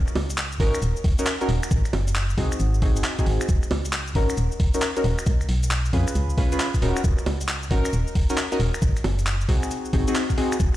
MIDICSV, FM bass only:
0, 0, Header, 1, 2, 480
1, 0, Start_track
1, 0, Key_signature, -6, "minor"
1, 0, Tempo, 444444
1, 1846, Time_signature, 4, 2, 24, 8
1, 11631, End_track
2, 0, Start_track
2, 0, Title_t, "FM bass"
2, 0, Program_c, 0, 39
2, 166, Note_on_c, 0, 37, 79
2, 624, Note_off_c, 0, 37, 0
2, 646, Note_on_c, 0, 32, 99
2, 776, Note_off_c, 0, 32, 0
2, 885, Note_on_c, 0, 27, 102
2, 1016, Note_off_c, 0, 27, 0
2, 1126, Note_on_c, 0, 27, 83
2, 1257, Note_off_c, 0, 27, 0
2, 1606, Note_on_c, 0, 27, 104
2, 1736, Note_off_c, 0, 27, 0
2, 1847, Note_on_c, 0, 32, 99
2, 1977, Note_off_c, 0, 32, 0
2, 2086, Note_on_c, 0, 30, 81
2, 2544, Note_off_c, 0, 30, 0
2, 2566, Note_on_c, 0, 36, 98
2, 2696, Note_off_c, 0, 36, 0
2, 2805, Note_on_c, 0, 32, 99
2, 3201, Note_on_c, 0, 30, 106
2, 3217, Note_off_c, 0, 32, 0
2, 3271, Note_off_c, 0, 30, 0
2, 3527, Note_on_c, 0, 32, 100
2, 3657, Note_off_c, 0, 32, 0
2, 3766, Note_on_c, 0, 27, 97
2, 3896, Note_off_c, 0, 27, 0
2, 4006, Note_on_c, 0, 37, 79
2, 4464, Note_off_c, 0, 37, 0
2, 4485, Note_on_c, 0, 32, 97
2, 4616, Note_off_c, 0, 32, 0
2, 4725, Note_on_c, 0, 27, 100
2, 4856, Note_off_c, 0, 27, 0
2, 4965, Note_on_c, 0, 27, 88
2, 5096, Note_off_c, 0, 27, 0
2, 5446, Note_on_c, 0, 27, 103
2, 5576, Note_off_c, 0, 27, 0
2, 5686, Note_on_c, 0, 37, 97
2, 5817, Note_off_c, 0, 37, 0
2, 5927, Note_on_c, 0, 35, 79
2, 6384, Note_off_c, 0, 35, 0
2, 6406, Note_on_c, 0, 41, 95
2, 6536, Note_off_c, 0, 41, 0
2, 6646, Note_on_c, 0, 37, 99
2, 6776, Note_off_c, 0, 37, 0
2, 6886, Note_on_c, 0, 37, 89
2, 7016, Note_off_c, 0, 37, 0
2, 7365, Note_on_c, 0, 27, 104
2, 7496, Note_off_c, 0, 27, 0
2, 7605, Note_on_c, 0, 27, 97
2, 7736, Note_off_c, 0, 27, 0
2, 7845, Note_on_c, 0, 37, 80
2, 8303, Note_off_c, 0, 37, 0
2, 8325, Note_on_c, 0, 32, 98
2, 8456, Note_off_c, 0, 32, 0
2, 8565, Note_on_c, 0, 27, 104
2, 8696, Note_off_c, 0, 27, 0
2, 8806, Note_on_c, 0, 27, 86
2, 8936, Note_off_c, 0, 27, 0
2, 9285, Note_on_c, 0, 27, 101
2, 9416, Note_off_c, 0, 27, 0
2, 9525, Note_on_c, 0, 32, 97
2, 9656, Note_off_c, 0, 32, 0
2, 9766, Note_on_c, 0, 30, 76
2, 10224, Note_off_c, 0, 30, 0
2, 10245, Note_on_c, 0, 36, 101
2, 10376, Note_off_c, 0, 36, 0
2, 10726, Note_on_c, 0, 32, 86
2, 10856, Note_off_c, 0, 32, 0
2, 11447, Note_on_c, 0, 27, 97
2, 11577, Note_off_c, 0, 27, 0
2, 11631, End_track
0, 0, End_of_file